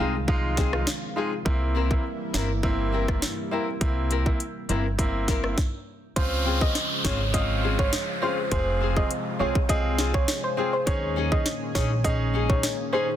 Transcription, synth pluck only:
6.16 6.34 C5 loud
6.62 6.70 D#5 medium
7.05 7.14 C#5 medium
7.34 7.44 D#5 medium
7.79 7.88 C#5 medium
8.23 8.32 C5 medium
8.52 8.70 C5 loud
8.97 9.05 D#5 medium
9.40 9.50 C#5 medium
9.70 9.79 D#5 medium
10.14 10.23 C#5 medium
10.44 10.52 C5 medium
10.73 10.82 C5 medium
10.87 11.05 C#5 loud
11.32 11.40 D#5 medium
11.75 11.85 C#5 medium
12.04 12.14 D#5 medium
12.49 12.58 C#5 medium
12.93 13.03 C5 medium

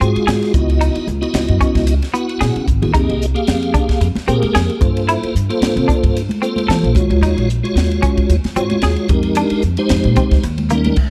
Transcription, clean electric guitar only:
0.01 0.24 C4 medium
0.27 0.50 G#4 medium
0.81 1.04 D#4 medium
1.61 1.84 C#4 medium
2.14 2.37 B3 medium
2.41 2.64 G#4 medium
2.94 3.17 D#4 medium
3.74 3.97 D4 medium
4.28 4.51 C4 medium
4.55 4.78 G#4 medium
5.09 5.31 E4 medium
5.88 6.11 D4 medium
6.42 6.65 C4 medium
6.68 6.92 A4 medium
7.23 7.46 D#4 medium
8.02 8.25 C#4 medium
8.56 8.79 C4 medium
8.83 9.06 G#4 medium
9.37 9.60 D4 medium
10.17 10.40 C4 medium
10.71 10.93 A#3 medium

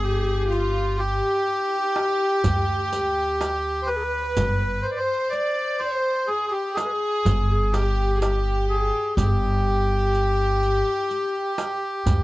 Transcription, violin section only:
0.00 0.47 G#4 medium
0.51 0.99 F4 medium
0.99 3.88 G4 medium
3.88 4.98 B4 medium
4.99 5.33 C5 medium
5.33 5.81 D5 medium
5.81 6.29 C5 medium
6.29 6.51 G#4 medium
6.52 6.77 G4 medium
6.76 7.73 G#4 medium
7.74 8.12 G4 medium
8.15 8.22 G#4 medium
8.22 9.17 G4 medium
9.18 12.23 G4 medium

